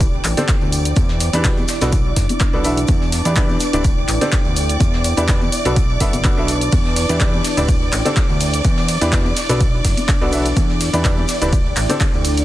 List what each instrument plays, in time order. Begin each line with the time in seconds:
Already playing: analog synth bass D1, ambient pad E4 D5 G5, violin section D5 D6
0.00 ambient pad D4, kick, closed hi-hat, tambourine, shaker
0.13 closed hi-hat
0.24 analog synth bass A1, clap, open hi-hat, tambourine, shaker
0.37 upright piano D3 D4 G4 A4 C5 D5, snare, closed hi-hat, tambourine, high conga, shaker
0.48 kick, snare, clap, closed hi-hat, tambourine, shaker
0.61 analog synth bass D2, closed hi-hat, tambourine
0.72 open hi-hat, tambourine, shaker
0.85 closed hi-hat, tambourine, shaker
0.96 analog synth bass E2, ambient pad E4, kick, closed hi-hat, tambourine, high conga, shaker
1.09 ambient pad D5, snare, tambourine
1.20 snare, open hi-hat, tambourine, shaker
1.33 analog synth bass E2, upright piano E3 D4 E4 G4 B4 D5, closed hi-hat, tambourine, shaker
1.44 upright piano B2 D4 E4 G4 B4 D5, kick, snare, clap, closed hi-hat, shaker
1.57 tambourine, high conga
1.68 ambient pad D4, snare, open hi-hat, tambourine, shaker
1.81 analog synth bass B1, upright piano B2 D4 F#4 A4 B4 D5, snare, closed hi-hat, tambourine, shaker
1.92 kick, closed hi-hat, tambourine, shaker
2.16 analog synth bass F#1, kick, snare, open hi-hat, tambourine, shaker
2.23 ambient pad B4 A5
2.29 closed hi-hat, tambourine, high conga, shaker
2.40 kick, snare, clap, closed hi-hat, tambourine, shaker
2.53 analog synth bass B1, upright piano B2 D4 F#4 A4 B4 D5, tambourine
2.64 upright piano E3 D4 F#4 A4 B4 E5, open hi-hat, tambourine, shaker
2.77 closed hi-hat, tambourine, shaker
2.87 analog synth bass E2, ambient pad E4, kick, closed hi-hat, tambourine, high conga, shaker
2.89 shaker
3.02 snare, tambourine
3.12 snare, open hi-hat, tambourine, shaker
3.25 analog synth bass E2, upright piano E3 D4 E4 G4 B4 D5, closed hi-hat, tambourine, shaker
3.32 ambient pad D5 G5, shaker
3.36 upright piano E3 D4 E4 G4 B4 D5, kick, snare, clap, closed hi-hat, tambourine, shaker
3.49 tambourine, high conga
3.60 snare, open hi-hat, tambourine, shaker
3.73 analog synth bass D1, upright piano D3 D4 E4 G4 B4 D5, closed hi-hat, tambourine, shaker
3.84 ambient pad D4, kick, closed hi-hat, tambourine, shaker
3.98 closed hi-hat
4.08 analog synth bass A1, clap, open hi-hat, tambourine, shaker
4.21 upright piano D3 D4 G4 A4 C5 D5, snare, closed hi-hat, tambourine, high conga, shaker
4.32 kick, snare, clap, closed hi-hat, tambourine, shaker
4.45 analog synth bass D2, closed hi-hat, tambourine
4.56 open hi-hat, tambourine, shaker
4.69 closed hi-hat, shaker
4.80 analog synth bass E2, ambient pad E4, kick, closed hi-hat, tambourine, high conga, shaker
4.94 snare, tambourine
5.00 ambient pad D5
5.04 snare, open hi-hat, tambourine, shaker
5.17 analog synth bass E2, upright piano E3 D4 E4 G4 B4 D5, closed hi-hat, tambourine, shaker
5.28 upright piano B2 D4 E4 G4 B4 D5, kick, snare, clap, closed hi-hat, tambourine, shaker
5.41 tambourine, high conga
5.52 ambient pad D4, open hi-hat, tambourine, shaker
5.65 analog synth bass B1, upright piano B2 D4 F#4 A4 B4 D5, closed hi-hat, tambourine, shaker
5.76 ambient pad A5, kick, closed hi-hat, tambourine, shaker
5.90 tambourine
5.95 ambient pad B4
6.00 analog synth bass F#1, upright piano B2 D4 F#4 A4 B4 E5, kick, snare, open hi-hat, tambourine, shaker
6.13 closed hi-hat, tambourine, high conga, shaker
6.24 upright piano B2 D4 F#4 A4 B4 D5, kick, snare, clap, closed hi-hat, tambourine, shaker
6.37 analog synth bass B1, upright piano B2 D4 F#4 A4 B4 E5, tambourine
6.48 open hi-hat, tambourine, shaker
6.61 closed hi-hat, tambourine, shaker
6.71 analog synth bass E2, ambient pad E4, kick, closed hi-hat, ride, tambourine, high conga, shaker
6.85 snare, tambourine
6.96 snare, open hi-hat, ride, tambourine, shaker
7.09 analog synth bass E2, upright piano E3 D4 E4 G4 B4 D5, closed hi-hat, tambourine, shaker
7.16 ambient pad D5 G5, tambourine
7.20 upright piano E3 D4 E4 G4 B4 D5, kick, snare, clap, closed hi-hat, ride, shaker
7.34 tambourine, high conga
7.44 snare, open hi-hat, ride, tambourine, shaker
7.57 analog synth bass D1, upright piano D3 D4 E4 G4 B4 D5, closed hi-hat, tambourine, shaker
7.68 ambient pad D4, kick, closed hi-hat, ride, tambourine, shaker
7.82 closed hi-hat
7.92 analog synth bass A1, clap, open hi-hat, ride, tambourine, shaker
8.05 upright piano D3 D4 G4 A4 C5 D5, snare, closed hi-hat, tambourine, high conga, shaker
8.16 kick, snare, clap, closed hi-hat, ride, tambourine, shaker
8.29 analog synth bass D2, closed hi-hat, tambourine
8.40 open hi-hat, ride, tambourine, shaker
8.53 closed hi-hat, tambourine, shaker
8.64 analog synth bass E2, ambient pad E4, kick, closed hi-hat, ride, tambourine, high conga, shaker
8.77 snare, tambourine
8.84 ambient pad D5
8.88 snare, open hi-hat, ride, tambourine, shaker
9.01 analog synth bass E2, upright piano E3 D4 E4 G4 B4 D5, closed hi-hat, tambourine, shaker
9.12 upright piano B2 D4 E4 G4 B4 D5, kick, snare, clap, closed hi-hat, ride, tambourine, shaker
9.25 tambourine, high conga
9.36 ambient pad D4, snare, open hi-hat, ride, tambourine, shaker
9.49 analog synth bass B1, upright piano B2 D4 F#4 A4 B4 D5, snare, closed hi-hat, shaker
9.61 kick, closed hi-hat, ride, tambourine, shaker
9.80 ambient pad B4
9.84 analog synth bass F#1, kick, snare, open hi-hat, ride, tambourine, shaker
9.91 ambient pad A5
9.97 closed hi-hat, tambourine, high conga, shaker
10.08 kick, snare, clap, closed hi-hat, ride, tambourine, shaker
10.21 analog synth bass B1, upright piano B2 D4 F#4 A4 B4 D5, tambourine
10.32 upright piano E3 D4 F#4 A4 B4 E5, open hi-hat, ride, tambourine, shaker
10.46 closed hi-hat, tambourine, shaker
10.56 analog synth bass E2, ambient pad E4, kick, closed hi-hat, ride, tambourine, high conga, shaker
10.69 snare, tambourine
10.80 ambient pad D5 G5, snare, open hi-hat, ride, tambourine, shaker
10.93 analog synth bass E2, upright piano E3 D4 E4 G4 B4 D5, closed hi-hat, tambourine, shaker
11.04 upright piano E3 D4 E4 G4 B4 D5, kick, snare, clap, closed hi-hat, ride, tambourine, shaker
11.17 tambourine, high conga
11.28 snare, open hi-hat, ride, tambourine, shaker
11.41 analog synth bass D1, upright piano D3 D4 E4 G4 B4 D5, closed hi-hat, shaker
11.52 ambient pad D4, kick, closed hi-hat, ride, tambourine, shaker
11.65 closed hi-hat
11.76 analog synth bass A1, clap, open hi-hat, ride, tambourine, shaker
11.89 upright piano D3 D4 G4 A4 C5 D5, snare, closed hi-hat, tambourine, high conga, shaker
12.01 kick, snare, clap, closed hi-hat, ride, tambourine, shaker
12.13 analog synth bass D2, closed hi-hat, tambourine
12.25 open hi-hat, ride, tambourine, shaker
12.38 closed hi-hat, tambourine, shaker